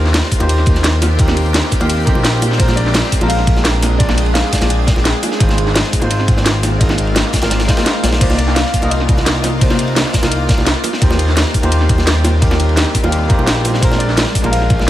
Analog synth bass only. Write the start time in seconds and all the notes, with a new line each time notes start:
Already playing: D#2
0.40 D#2
0.67 D#2
1.19 D#2
1.81 D#2
2.07 F2
2.16 A#1
2.60 A#1
3.21 A#1
3.47 A#1
4.00 A#1
4.62 A#1
4.97 A#1
5.40 G#1
6.02 G#1
6.28 G#1
6.81 G#1
7.42 G#1
8.03 A#1
8.21 C2
8.83 C2
9.09 C2
9.61 C2
10.23 C2
10.58 C2
11.02 D#2
11.63 D#2
11.89 D#2
12.42 D#2
13.04 D#2
13.30 F2
13.39 A#1
13.82 A#1
14.44 A#1
14.70 A#1